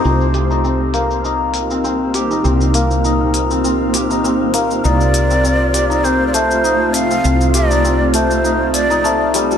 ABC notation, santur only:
X:1
M:4/4
L:1/16
Q:"Swing 16ths" 1/4=100
K:Cdor
V:1 name="Santur"
C z G E C z B, z E z2 C C z G E | C z B, z E z2 C C z G E C z B, z | E z2 C C z G E C z A, z E z2 C | C z G E C z A, z E z2 E A, z G, G, |]